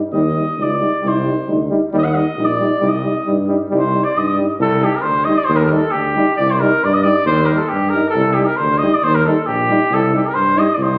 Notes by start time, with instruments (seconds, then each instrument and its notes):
0.12 tuba D#2, trombone G3, euphonium D#4, flugelhorn D#5
0.34 trombone G3, euphonium D#4
0.57 tuba C#2, trombone G3, euphonium D#4
0.62 flugelhorn D5
0.79 trombone G3, euphonium D#4
1.00 tuba C2, trombone G3
1.05 euphonium D#4, flugelhorn C5
1.24 trombone G3, euphonium D#4
1.46 tuba D2, trombone G3, euphonium D#4
1.70 trombone G3, euphonium D#4
1.92 tuba D#2, trombone G3, euphonium D#4
1.99 flugelhorn D#5
2.04 flugelhorn F#5
2.12 trombone G3, flugelhorn D#5
2.16 euphonium D#4
2.36 tuba A#1, trombone G3, euphonium D#4
2.45 flugelhorn D5
2.58 trombone G3, euphonium D#4
2.79 tuba C2, trombone G3, euphonium D#4
2.88 flugelhorn D#5
3.03 trombone G3, euphonium D#4
3.25 tuba G2, trombone G3, euphonium D#4
3.47 trombone G3, euphonium D#4
3.69 tuba C2, trombone G3, euphonium D#4
3.79 flugelhorn C5
3.93 trombone G3, euphonium D#4
4.04 flugelhorn D5
4.15 tuba G2, trombone G3, euphonium D#4, flugelhorn D#5
4.37 trombone G3, euphonium D#4
4.59 tuba C2, flugelhorn A4
4.81 trombone G3, euphonium D#4, flugelhorn G4
4.95 flugelhorn A#4
5.02 tuba D2, flugelhorn C5
5.25 trombone G3, euphonium D#4, flugelhorn D#5
5.38 flugelhorn D5
5.44 flugelhorn C5
5.49 tuba D#2
5.56 flugelhorn A#4
5.61 flugelhorn A4 A#4
5.70 trombone G3, euphonium D#4, flugelhorn A4
5.91 tuba D2, flugelhorn G4
6.15 trombone G3, euphonium D#4
6.36 tuba C2, flugelhorn D5
6.50 flugelhorn C5
6.60 trombone G3, euphonium D#4, flugelhorn A#4
6.84 tuba G2, flugelhorn D5
6.93 flugelhorn D#5
7.03 trombone G3, euphonium D#4, flugelhorn D5
7.26 tuba D#2, flugelhorn C5
7.46 euphonium D#4, flugelhorn A#4
7.51 trombone G3
7.58 flugelhorn A4
7.69 tuba G2, flugelhorn G4
7.89 trombone G3, flugelhorn A#4
7.95 euphonium D#4
8.10 flugelhorn A4
8.15 tuba C2
8.34 trombone G3, flugelhorn G4
8.38 euphonium D#4
8.45 flugelhorn A#4
8.57 tuba D2, flugelhorn C5
8.78 flugelhorn D#5
8.82 trombone G3, euphonium D#4
8.94 flugelhorn D5
9.02 tuba D#2, flugelhorn C5
9.15 flugelhorn A#4
9.25 trombone G3, euphonium D#4, flugelhorn A4
9.40 flugelhorn A4
9.46 tuba A#1, flugelhorn G4
9.69 trombone G3, euphonium D#4
9.91 tuba C2, flugelhorn A4
10.12 trombone G3, euphonium D#4, flugelhorn G4
10.27 flugelhorn A#4
10.34 tuba G2, flugelhorn C5
10.55 trombone G3, euphonium D#4, flugelhorn D#5
10.74 tuba C2, flugelhorn D5
10.82 flugelhorn C5